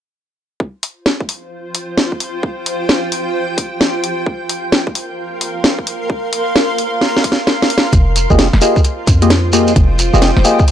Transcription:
0.60 ambient pad F4, kick
0.66 ambient pad C5
0.83 open hi-hat
1.06 snare
1.16 ambient pad G5
1.21 kick
1.29 open hi-hat
1.75 open hi-hat
1.98 snare
2.12 kick
2.20 open hi-hat
2.43 kick
2.66 open hi-hat
2.89 snare
3.12 open hi-hat
3.58 kick, open hi-hat
3.81 snare
4.04 ambient pad A#4, open hi-hat
4.26 ambient pad F5, kick
4.49 open hi-hat
4.65 ambient pad C6
4.72 snare
4.87 kick
4.95 open hi-hat
5.41 open hi-hat
5.64 snare
5.79 kick
5.87 open hi-hat
6.10 kick
6.33 open hi-hat
6.56 snare
6.78 open hi-hat
7.01 snare
7.17 snare
7.24 kick, open hi-hat
7.32 snare
7.47 snare
7.62 snare
7.70 open hi-hat
7.78 snare
7.92 808-style bass F1, ambient pad F4, kick, closed hi-hat, shekere
8.03 ambient pad C5
8.16 open hi-hat, shekere
8.30 808-style bass F1, synth stab A#3 F4 G4 G#4 D#5, kick, shekere
8.39 snare, closed hi-hat, shekere
8.53 808-style bass F1, ambient pad G5, snare
8.61 synth stab A#3 F4 G4 G#4 D#5, open hi-hat, shekere
8.76 kick, shekere
8.84 closed hi-hat, shekere
9.07 808-style bass F2, kick, snare, open hi-hat, shekere
9.22 synth stab A#3 F4 G4 G#4 D#5, closed hi-hat, shekere
9.30 snare, closed hi-hat, shekere
9.53 synth stab A#3 F4 G4 G#4 D#5, open hi-hat, shekere
9.67 closed hi-hat, shekere
9.76 808-style bass F1, kick, closed hi-hat, shekere
9.99 open hi-hat, shekere
10.14 808-style bass F1, synth stab A#3 F4 G4 G#4 D#5, shekere
10.22 snare, closed hi-hat, shekere
10.37 808-style bass F1, snare
10.44 synth stab A#3 F4 G4 G#4 D#5, open hi-hat, shekere
10.59 kick, shekere
10.67 closed hi-hat, shekere

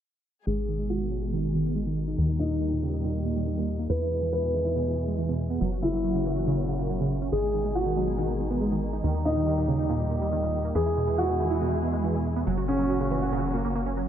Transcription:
0.47 analog synth bass G#1, string section B2 D#3 G#3 D#4 G#4, synth pluck G#3, grand piano G#4
0.57 synth pluck G#4
0.68 synth pluck D#3
0.79 synth pluck G#3
0.90 synth pluck G#3, grand piano F#4
1.00 synth pluck D#3
1.11 synth pluck F#3
1.22 synth pluck G#4
1.32 synth pluck D#3
1.54 synth pluck D#3
1.65 synth pluck B3
1.75 synth pluck G#3
1.86 synth pluck D#3
2.08 synth pluck D#4
2.18 analog synth bass D#2, string section A#2 G3 G4, synth pluck D#3
2.29 synth pluck D#4
2.39 synth pluck A#2, grand piano D#4
2.50 synth pluck D#3
2.61 synth pluck D#3
2.72 synth pluck A#2
2.83 synth pluck C#3
2.93 synth pluck D#4
3.04 synth pluck A#2
3.25 synth pluck A#2
3.36 synth pluck G3
3.47 synth pluck D#3
3.57 synth pluck A#2
3.79 synth pluck A#3
3.89 analog synth bass E2, string section B2 E3 G#3 E4 G#4, synth pluck E3, grand piano B4
4.00 synth pluck E4
4.11 synth pluck B2
4.22 synth pluck E3
4.33 synth pluck E3, grand piano B4
4.43 synth pluck B2
4.54 synth pluck D#3
4.65 synth pluck E4
4.75 synth pluck B2
4.97 synth pluck B2
5.07 synth pluck G#3
5.18 synth pluck E3
5.29 synth pluck B2
5.50 synth pluck B3
5.61 analog synth bass F#1, string section A#2 C#3 F#3 C#4 F#4, synth pluck F#3
5.72 synth pluck F#4
5.82 synth pluck C#3, grand piano E4
5.93 synth pluck F#3
6.04 synth pluck F#3
6.15 synth pluck C#3
6.25 synth pluck E3
6.36 synth pluck F#4
6.47 synth pluck C#3
6.68 synth pluck C#3
6.79 synth pluck A#3
6.90 synth pluck F#3
7.00 synth pluck C#3
7.22 synth pluck C#4
7.32 analog synth bass G#1, string section B2 D#3 G#3 D#4 G#4, synth pluck G#3, grand piano G#4
7.43 synth pluck G#4
7.54 synth pluck D#3
7.65 synth pluck G#3
7.75 synth pluck G#3, grand piano F#4
7.86 synth pluck D#3
7.97 synth pluck F#3
8.08 synth pluck G#4
8.18 synth pluck D#3
8.40 synth pluck D#3
8.50 synth pluck B3
8.61 synth pluck G#3
8.72 synth pluck D#3
8.93 synth pluck D#4
9.04 analog synth bass D#2, string section A#2 G3 G4, synth pluck D#3
9.15 synth pluck D#4
9.25 synth pluck A#2, grand piano D#4
9.36 synth pluck D#3
9.47 synth pluck D#3
9.57 synth pluck A#2
9.68 synth pluck C#3
9.79 synth pluck D#4
9.89 synth pluck A#2
10.11 synth pluck A#2
10.21 synth pluck G3
10.32 synth pluck D#3
10.43 synth pluck A#2
10.64 synth pluck A#3
10.75 analog synth bass E2, string section B2 E3 G#3 E4 G#4, synth pluck E3, grand piano G#4
10.86 synth pluck E4
10.97 synth pluck B2
11.07 synth pluck E3
11.18 synth pluck E3, grand piano F#4
11.29 synth pluck B2
11.40 synth pluck D#3
11.50 synth pluck E4
11.61 synth pluck B2
11.82 synth pluck B2
11.93 synth pluck G#3
12.04 synth pluck E3
12.15 synth pluck B2
12.36 synth pluck B3
12.47 analog synth bass F#1, string section A#2 C#3 F#3 C#4 F#4, synth pluck F#3
12.57 synth pluck F#4
12.68 synth pluck C#3, grand piano C#4
12.79 synth pluck F#3
12.90 synth pluck F#3
13.00 synth pluck C#3
13.11 synth pluck E3
13.22 synth pluck F#4
13.32 synth pluck C#3
13.54 synth pluck A#3
13.65 synth pluck A#3
13.75 synth pluck A#3
13.86 synth pluck C#4
13.97 synth pluck F#3

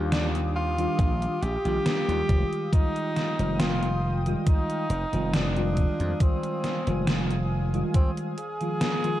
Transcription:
Already playing: slap bass D#2, tine electric piano D#3 G3 D4 F4, analog synth pad G4 F5 D6 D#6
0.12 tenor saxophone D4, snare, closed hi-hat
0.35 closed hi-hat
0.55 tenor saxophone F4
0.78 tine electric piano D#3 G3 D4 F4, closed hi-hat
0.99 slap bass A#1, kick, closed hi-hat
1.22 closed hi-hat
1.42 slap bass A#1, tenor saxophone G4, closed hi-hat
1.64 slap bass A#1, tine electric piano D#3 G3 D4 F4, closed hi-hat
1.86 snare, closed hi-hat
2.08 slap bass D#2, tine electric piano D#3 G3 G#3 F4, closed hi-hat
2.29 slap bass F1, analog synth pad F5 G5, kick, closed hi-hat
2.53 closed hi-hat
2.72 tine electric piano D#3 G3 G#3 F4, tenor saxophone D#4, kick, closed hi-hat
2.96 closed hi-hat
3.16 snare, closed hi-hat
3.39 slap bass F1, tine electric piano D#3 G3 G#3 F4, closed hi-hat
3.60 tenor saxophone F4, snare, closed hi-hat
3.83 closed hi-hat
4.26 tine electric piano D#3 G3 G#3 F4, closed hi-hat
4.47 tenor saxophone D#4, kick, closed hi-hat
4.70 closed hi-hat
4.90 slap bass F1, closed hi-hat
5.12 slap bass F1, tine electric piano D#3 G3 G#3 F4, closed hi-hat
5.34 tenor saxophone D4, snare, closed hi-hat
5.56 tine electric piano D#3 G3 G#3 F4, closed hi-hat
5.77 analog synth pad G#5, kick, closed hi-hat
6.00 slap bass F2, closed hi-hat
6.20 tine electric piano D#3 G3 G#3 F4, tenor saxophone C4, kick, closed hi-hat
6.43 closed hi-hat
6.64 snare, closed hi-hat
6.87 slap bass F1, tine electric piano D#3 G3 G#3 F4, closed hi-hat
7.07 snare, closed hi-hat
7.30 closed hi-hat
7.73 tine electric piano D#3 G3 G#3 F4, closed hi-hat
7.94 tenor saxophone C4, kick, closed hi-hat
8.17 closed hi-hat
8.38 tenor saxophone G#4, closed hi-hat
8.60 tine electric piano D#3 F3 G#3 F4, closed hi-hat
8.81 snare, closed hi-hat
9.04 tine electric piano D#3 F3 G#3 F4, closed hi-hat

